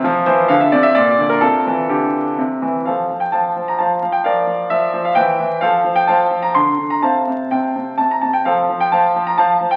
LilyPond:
<<
  \new Staff \with { instrumentName = "Grand piano" } { \time 3/4 \key f \major \tempo 4 = 129 << { r8 c''8 f''16 e''16 d''16 e''16 d''8. bes'16 | a'4 g'4 r4 | <a' c'' f''>8. g''16 <c'' f'' a''>8. bes''16 <c'' f'' a''>8 f''16 g''16 | <bes' d'' f''>4 e''8. f''16 <c'' e'' g''>4 |
<a' c'' f''>8. g''16 <c'' f'' a''>8. bes''16 c'''8. bes''16 | <c'' f'' a''>4 <c'' g''>4 a''16 bes''16 a''16 g''16 | <a' c'' f''>8. g''16 <c'' f'' a''>8. bes''16 <c'' f'' a''>8. g''16 | } \\ { f'2 r4 | f'2 r4 | r2. | r2. |
r2. | r2. | r2. | } >> }
  \new Staff \with { instrumentName = "Grand piano" } { \clef bass \time 3/4 \key f \major f8 e8 d8 c8 bes,8 d8 | c8 e8 d4 c8 e8 | f8 f8 f8 f8 f8 f8 | f8 f8 f8 f8 e8 e8 |
f8 f8 f8 f8 d8 d8 | c8 c8 c8 c8 c8 c8 | f8 f8 f8 f8 f8 f8 | }
>>